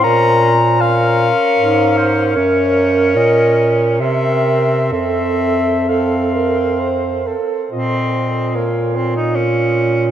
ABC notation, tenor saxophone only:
X:1
M:3/4
L:1/16
Q:1/4=74
K:Bbm
V:1 name="Tenor saxophone"
D2 z2 D8 | D8 C4 | C4 C6 z2 | C4 B,2 C E D4 |]